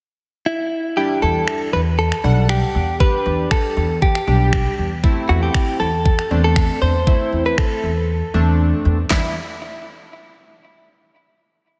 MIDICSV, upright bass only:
0, 0, Header, 1, 2, 480
1, 0, Start_track
1, 0, Key_signature, 1, "minor"
1, 0, Tempo, 508475
1, 915, Time_signature, 4, 2, 24, 8
1, 11136, End_track
2, 0, Start_track
2, 0, Title_t, "Upright bass"
2, 0, Program_c, 0, 32
2, 1154, Note_on_c, 0, 40, 97
2, 1327, Note_off_c, 0, 40, 0
2, 1634, Note_on_c, 0, 40, 94
2, 1980, Note_off_c, 0, 40, 0
2, 2114, Note_on_c, 0, 35, 97
2, 2460, Note_off_c, 0, 35, 0
2, 2594, Note_on_c, 0, 40, 82
2, 2940, Note_off_c, 0, 40, 0
2, 3074, Note_on_c, 0, 40, 94
2, 3247, Note_off_c, 0, 40, 0
2, 3555, Note_on_c, 0, 40, 94
2, 3900, Note_off_c, 0, 40, 0
2, 4035, Note_on_c, 0, 35, 99
2, 4381, Note_off_c, 0, 35, 0
2, 4515, Note_on_c, 0, 40, 85
2, 4861, Note_off_c, 0, 40, 0
2, 4995, Note_on_c, 0, 40, 98
2, 5168, Note_off_c, 0, 40, 0
2, 5474, Note_on_c, 0, 40, 97
2, 5820, Note_off_c, 0, 40, 0
2, 5955, Note_on_c, 0, 40, 98
2, 6300, Note_off_c, 0, 40, 0
2, 6435, Note_on_c, 0, 40, 85
2, 6781, Note_off_c, 0, 40, 0
2, 6914, Note_on_c, 0, 40, 93
2, 7087, Note_off_c, 0, 40, 0
2, 7395, Note_on_c, 0, 40, 93
2, 7740, Note_off_c, 0, 40, 0
2, 7875, Note_on_c, 0, 40, 98
2, 8220, Note_off_c, 0, 40, 0
2, 8355, Note_on_c, 0, 40, 85
2, 8528, Note_off_c, 0, 40, 0
2, 8595, Note_on_c, 0, 40, 86
2, 8818, Note_off_c, 0, 40, 0
2, 11136, End_track
0, 0, End_of_file